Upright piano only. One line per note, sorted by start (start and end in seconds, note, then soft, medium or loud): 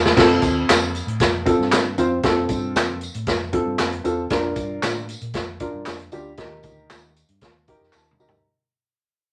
0.17 0.87 C4 medium
0.17 0.87 F4 medium
0.17 0.88 A4 loud
1.46 1.81 C4 medium
1.46 1.81 F4 medium
1.46 1.82 A4 medium
1.98 2.16 C4 medium
1.98 2.16 F4 medium
1.98 2.16 C5 medium
2.24 2.94 C4 medium
2.24 2.95 F4 medium
2.24 2.95 A4 loud
3.53 3.88 C4 medium
3.53 3.88 F4 medium
3.53 3.89 A4 medium
4.04 4.22 C4 medium
4.04 4.23 F4 medium
4.04 4.23 A4 medium
4.31 5.01 D4 medium
4.31 5.01 F4 medium
4.31 5.02 A#4 loud
5.60 5.96 D4 medium
5.60 5.96 F4 medium
5.60 5.96 A#4 medium
6.12 6.30 D4 medium
6.12 6.30 F4 medium
6.12 6.30 G4 medium
6.38 7.12 D#3 medium
6.38 7.08 D#4 medium
6.38 7.09 G4 medium
6.38 7.09 A#4 loud
7.68 8.03 D#4 medium
7.68 8.03 G4 medium
7.68 8.04 A#4 loud
7.68 7.92 G5 medium
7.95 8.18 A5 medium
8.19 8.37 D#4 medium
8.19 8.37 G4 medium
8.19 8.38 A#4 medium
8.19 8.44 A#5 medium